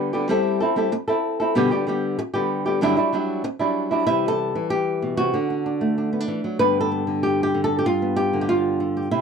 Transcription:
Already playing: D3 G3 B3 G4
0.13 D3 G3 B3 G4
0.29 G3 C4 E4 A4
0.60 C4 E4 A4
0.76 G3 C4 E4 A4
0.92 muted nylon-string guitar stroke
1.08 C4 E4 A4
1.40 C4 E4 A4
1.55 G2 B2 D3 G3 B3 G4
1.71 D3 G3 B3 G4
1.87 D3 G3 B3 G4
2.19 muted nylon-string guitar stroke
2.34 D3 G3 B3 G4
2.66 D3 G3 B3 G4
2.81 G2 D3 F#3 G3 D4 E4
2.97 F#3 G3 D4 E4
3.13 F#3 G3 D4 E4
3.44 muted nylon-string guitar stroke
3.59 F#3 G3 D4 E4
3.91 F#3 G3 D4 E4
4.07 C3 E3 G3 E4
4.28 A4
4.55 E3
4.70 G4
5.02 B2
5.17 C3 F#4
5.34 D3 D4
5.50 D4
5.66 D4
5.81 A3
5.98 D4
6.13 B3
6.20 D4
6.28 E3
6.44 F#3
6.59 G2 D3 B3 D4 B4
6.81 A4
6.92 B3
7.07 D3
7.23 G4
7.43 G4
7.54 D3
7.64 A4
7.79 G4
7.86 G2 F4
8.02 B3
8.16 G4
8.33 D3
8.41 G4
8.49 F4
8.80 D3
8.97 G4
9.11 C3 E4

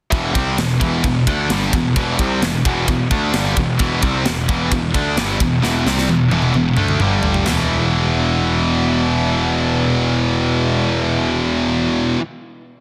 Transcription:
0.11 E1 E2 B2 E3, kick, ride
0.34 C2 C3 G3 C4, kick, ride
0.57 E1 E2 B2, snare, ride
0.80 E1 E2 B2 E3, kick, ride
1.04 E1 E2 B2, kick, ride
1.27 D2 D3 A3 D4, kick, ride
1.49 G1 G2 D3 G3, snare, ride
1.73 E1 E2 B2, kick, ride
1.96 E1 E2 B2 E3, kick, ride
2.19 C2 C3 G3 C4, kick, ride
2.42 E1 E2 B2, snare, ride
2.65 E1 E2 B2 E3, kick, ride
2.88 E1 E2 B2, kick, ride
3.11 D2 D3 A3 D4, kick, ride
3.33 G1 G2 D3 G3, snare, ride
3.57 E1 E2 B2, kick, ride
3.79 E1 E2 B2 E3, kick, ride
4.02 C2 C3 G3 C4, kick, ride
4.25 E1 E2 B2, snare, ride
4.48 E1 E2 B2 E3, kick, ride
4.71 E1 E2 B2, kick, ride
4.94 D2 D3 A3 D4, kick, ride
5.17 G1 G2 D3 G3, snare, ride
5.40 E1 E2 B2, kick, ride
5.62 E1 E2 B2 E3, snare
5.86 C2 C3 G3 C4, snare
5.98 snare
6.08 E1 E2 B2, high tom
6.31 E1 E2 B2 E3, high tom
6.42 mid tom
6.54 E1 E2 B2, mid tom
6.77 D2 D3 A3 D4, mid tom
6.88 mid tom
7.00 G1 G2 D3 G3, mid tom
7.23 floor tom
7.34 floor tom
7.44 E1 E2 B2, snare, floor tom, splash
7.48 E3

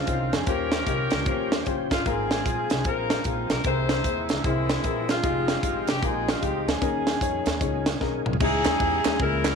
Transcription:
Already playing: C#3 D#3 G#3 C4 F4
0.07 C2 C#4 D#4 F4 C5, kick, closed hi-hat
0.33 F2 G#4, snare, closed hi-hat
0.46 D#2 D#3 F3 C#4 F4 G4 A#4 C5, kick, closed hi-hat
0.72 snare, closed hi-hat
0.86 C2 C#4 F4 G4 D#5, kick, closed hi-hat
1.11 C#2, snare, closed hi-hat
1.26 D#2 C#4 F4 G4 C5, kick, closed hi-hat
1.52 snare, closed hi-hat
1.66 F#1 C#4 F4 G4 C5, kick, closed hi-hat
1.91 G1 F4, kick, snare, closed hi-hat
2.06 G#1 G#2 F3 A#3 C4 F4 G#4 A#4, kick, closed hi-hat
2.31 snare, closed hi-hat
2.45 A#1 C4 F4 G#4 C5, kick, closed hi-hat
2.70 C2, snare, closed hi-hat
2.84 A#1 C4 D#4 F4 G#4 A#4 C5, kick, closed hi-hat
3.10 snare, closed hi-hat
3.24 A#1 C4 F4 G#4 C5, kick, closed hi-hat
3.50 B1 A#4, snare, closed hi-hat
3.64 C2 C3 E3 A#3 C4 D#4 E4 G#4 A#4 C5, kick, closed hi-hat
3.89 snare, closed hi-hat
4.04 D#2 C4 E4 G#4 C5, kick, closed hi-hat
4.29 C#2, snare, closed hi-hat
4.44 C2 G#3 A#3 C4 E4 G#4 C5, kick, closed hi-hat
4.69 snare, closed hi-hat
4.84 A#1 C4 E4 G#4 A#4, kick, closed hi-hat
5.09 G#3 C4 F4, snare, closed hi-hat
5.23 F1 F3 G#3 D#4 F4 G4 G#4, kick, closed hi-hat
5.48 snare, closed hi-hat
5.63 G1 D#4 F4 G4 G#4, kick, closed hi-hat
5.87 F1 G4, snare, closed hi-hat
6.03 A#1 C4 D#4 F4 G4 G#4 A#4, kick, closed hi-hat
6.28 F4, snare, closed hi-hat
6.41 C#2 D#4 F4 G4 G#4, kick, closed hi-hat
6.67 D2 C#4 G#4, snare, closed hi-hat
6.81 D#2 D#3 A#3 C#4 D#4 G#4 A#4, kick, closed hi-hat
7.07 snare, closed hi-hat
7.21 F2 C#4 D#4 G#4 C#5, kick, closed hi-hat
7.46 D#2, snare, closed hi-hat
7.61 C#2 C#4 D#4 G#4 C#5, kick, closed hi-hat
7.86 snare, closed hi-hat
8.00 B1 C#4 D#4 G#4 A#4, kick, snare
8.26 C2, mid tom
8.33 floor tom
8.40 C#2 C#3 E3 G#3 C#4 D#4 E4 G#4 D#5, kick, crash
8.65 D#2, snare, clap, ride
8.80 E2 G#3 C#4 D#4 E4 G4, kick, ride
9.04 D#2 G#3 C#4 D#4 E4 G#4, snare, clap, ride
9.19 C#2 C#3 D#3 G#3 A#3 C#4 E4 G#4 A#4, kick, ride
9.25 E3
9.44 snare, clap, ride

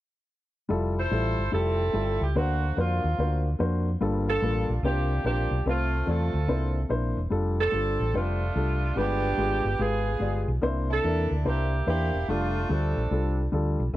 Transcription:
0.69 F1 G3 E4 F4 A4
0.98 E4 A4 C5
1.11 A1 G3 E4 F4 A4
1.38 G1
1.52 F1 G3 C4 E4 F4 G4 A4
1.93 G1 G3 E4 F4 A4
2.21 C#2 G4
2.35 D2 D3 A#3 C4 D4 F#4 C5
2.77 F2 A#3 C4 D4 F4 F#4 C5
3.04 D#2
3.18 D2 A#3 D4 F#4 C5
3.59 F2 A#3 D4 F#4 C5
4.01 G1 G2 G3 A#3 F4 A4
4.28 D4 F4 A4
4.42 A1 G3 A#3 F4 A4
4.69 A#1
4.83 C2 C3 A#3 D4 F4 G4 C5
5.24 A#1 A#3 D4 F4 G4 C5
5.51 B1
5.66 C2 C3 A3 C4 F4 C5
6.06 E2 A3 C4 F4 A4 D5
6.34 D2
6.48 C2 C3 A#3 D4 E4 C5
6.89 A#1 A#3 D4 E4 C5
7.17 E1
7.30 F1 G3 D4 F4 A4
7.59 C4 D4 A4
7.72 G1 G3 D4 F4 A4
8.00 A1
8.14 F1 G3 A3 D4 F4 C5
8.55 C2 G3 D4 F4 A4
8.96 G1 G2 G#3 B3 D4 F4 G4 B4
9.37 G#1 G#3 F4 G4 B4
9.65 G1
9.79 G#1 G#3 B3 F4 G4 G#4 B4
10.19 G1 G#3 F4 G4 D5
10.48 B1
10.62 C2 C3 A#3 D4 E4 C5
10.90 D4 E4 A4
11.03 E2 A#3 D4 E4 A#4
11.31 D2
11.44 C2 A#3 D4 E4 G4 C5
11.86 E2 A#3 D4 E4 G4 C5
12.14 E1
12.28 F1 G3 A3 D4 F4 A4
12.69 D2 G3 C4 D4 F4 A4
12.97 A#1
13.11 C2 G3 D4 F4 A4
13.52 D2 G3 D4 F4 A4
13.80 B1

